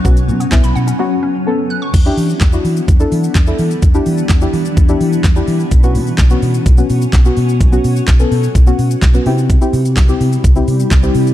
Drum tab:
CC |----------------|x---------------|----------------|----------------|
HH |-x-x-x-x--------|x-o-x-o-x-o-x-o-|x-o-x-o-x-o-x-o-|x-o-x-o-x-o-x-o-|
SH |xxxxxxxx--------|xxxxxxxxxxxxxxxx|xxxxxxxxxxxxxxxx|xxxxxxxxxxxxxxxx|
CP |----x-----------|----x-------x---|----x-------x---|----x-------x---|
SD |----o-----------|----o-------o---|----o-------o---|----o-------o---|
BD |o---o-----------|o---o---o---o---|o---o---o---o---|o---o---o---o---|

CC |----------------|----------------|
HH |x-o-x-o-x-o-x-o-|x-o-x-o-x-o-x-o-|
SH |xxxxxxxxxxxxxxxx|xxxxxxxxxxxxxxxx|
CP |----x-------x---|----x-------x---|
SD |----o-------o---|----o-------o---|
BD |o---o---o---o---|o---o---o---o---|